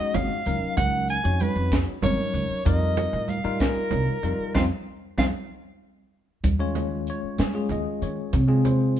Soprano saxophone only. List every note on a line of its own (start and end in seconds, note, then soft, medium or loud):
0.00 0.17 D#5 medium
0.15 0.77 F5 loud
0.77 1.07 F#5 loud
1.10 1.43 G#5 medium
1.42 1.77 B4 medium
2.04 2.62 C#5 medium
2.66 3.31 D#5 loud
3.30 3.62 F5 medium
3.61 4.55 A#4 medium
4.55 4.63 F5 medium
5.19 5.26 F5 medium